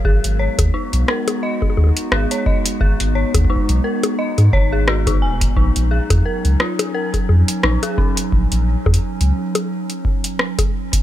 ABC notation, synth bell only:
X:1
M:4/4
L:1/16
Q:"Swing 16ths" 1/4=87
K:G#dor
V:1 name="Synth bell"
G z c z D z A z d z3 G c d z | G z c z D z A z d z c G F D g z | D z G z A z E z A z3 D G C z | z16 |]